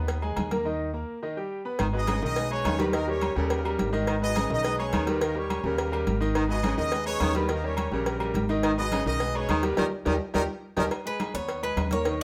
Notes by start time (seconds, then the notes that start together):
Already playing: D#2 B3 B4 B5
0.08 cowbell, high conga, low agogo
0.22 G#3 G#4 G#5, high conga, low agogo
0.36 D#2, cowbell, high conga, low agogo
0.51 A#3 A#4 A#5, cowbell, high conga
0.65 D#3 D#4 D#5
0.93 A#3 A#4 A#5
1.22 D#3 D#4 D#5
1.37 G3 G4 G5
1.65 B3 B4 B5
1.79 G#1 D#3, cowbell, high conga, low agogo
1.93 B2 G#3 D#4 G#4 B4 D#5, high conga
2.07 C#3, cowbell, high conga, low agogo
2.22 B1 D#3 D#4 D#5, high conga
2.36 G#3 G#4 B4, cowbell, high conga, low agogo
2.51 G#3 C#4 G#4 B4 C#5, high conga, low agogo
2.64 D#2 D#3, cowbell, high conga, low timbale, low agogo
2.79 G3 B3 G4 A#4 B4, cowbell, high conga
2.93 D#3 A#3 D#4 A#4 D#5, cowbell, high conga, low agogo
3.07 G3 C#4 G4 A#4 C#5, high conga
3.21 cowbell, high conga, low agogo
3.35 D#2 C#3 G3 A#3 G4 A#4, high conga
3.50 cowbell, high conga, low agogo
3.65 G3 G4 A#4, high conga, low agogo
3.79 G#1, cowbell, high conga
3.93 D#3 D#4 D#5, high conga, low agogo
4.07 D#3, cowbell, high conga, low agogo
4.22 B2 G#3 D#4 G#4 B4 D#5, high conga
4.36 C#3, cowbell, high conga, low agogo
4.50 B1 D#3 D#4 D#5, high conga
4.64 G#3 G#4 B4, cowbell, high conga, low agogo
4.79 G#3 C#4 G#4 B4 C#5, high conga, low agogo
4.93 D#2 D#3, cowbell, high conga, low agogo
5.07 G3 B3 G4 A#4 B4, cowbell, high conga
5.21 D#3 A#3 D#4 A#4 D#5, cowbell, high conga, low agogo
5.35 G3 C#4 G4 A#4 C#5, high conga
5.50 cowbell, high conga, low agogo
5.64 D#2 C#3 G3 A#3 G4 A#4, high conga
5.78 cowbell, high conga, low agogo
5.92 G3 G4 A#4, high conga, low agogo
6.07 G#1, cowbell, high conga
6.20 D#3 D#4 D#5, high conga, low agogo
6.35 D#3, cowbell, high conga, low agogo
6.49 B2 G#3 D#4 G#4 B4 D#5, high conga
6.63 C#3, cowbell, high conga, low agogo
6.78 D#2 D#3 D#4 D#5, high conga
6.92 G#3 G#4 B4, cowbell, high conga, low agogo
7.06 G#3 C#4 G#4 B4 C#5, high conga, low agogo
7.20 D#2 D#3, cowbell, high conga, low timbale, low agogo
7.35 G3 B3 G4 A#4 B4, cowbell, high conga
7.49 D#3 A#3 D#4 A#4 D#5, cowbell, high conga, low agogo
7.64 G3 C#4 G4 A#4 C#5, high conga
7.77 cowbell, high conga, low agogo
7.91 A#1 C#3 G3 A#3 G4 A#4, high conga
8.06 cowbell, high conga, low agogo
8.20 G3 G4 A#4, high conga, low agogo
8.34 G#1, cowbell, high conga
8.49 D#3 D#4 D#5, high conga, low agogo
8.63 D#3, cowbell, high conga, low agogo
8.78 B2 G#3 D#4 G#4 B4 D#5, high conga
8.92 C#3, cowbell, high conga, low agogo
9.06 B1 D#3 D#4 D#5, high conga
9.20 G#3 G#4 B4, cowbell, high conga, low agogo
9.35 G#3 C#4 G#4 B4 C#5, high conga, low agogo
9.49 D#2 D#3, cowbell, high conga, low agogo
9.63 G3 B3 G4 A#4 B4, cowbell, high conga
9.77 D#2 D#3 D#4 G4 A#4, cowbell, high conga, high timbale
10.05 D#2 D#3 D#4 G4 A#4, cowbell, high conga, high timbale
10.34 D#2 D#3 D#4 G4 A#4, cowbell, high conga, high timbale
10.77 D#2 D#3 D#4 G4 A#4, cowbell, high conga, high timbale
10.91 cowbell, high conga, low agogo
11.05 G#3 G#4 B4 G#5, high conga
11.20 cowbell, high conga, low agogo
11.34 D#2 B3 B4 C#5 B5, high conga
11.49 cowbell, high conga, low agogo
11.63 G#3 G#4 B4 G#5, high conga, low agogo
11.77 D#2, cowbell, high conga, low timbale, low agogo
11.91 A#3 A#4 C#5 A#5, cowbell, high conga
12.05 D#3 D#4 D#5, cowbell, high conga, low agogo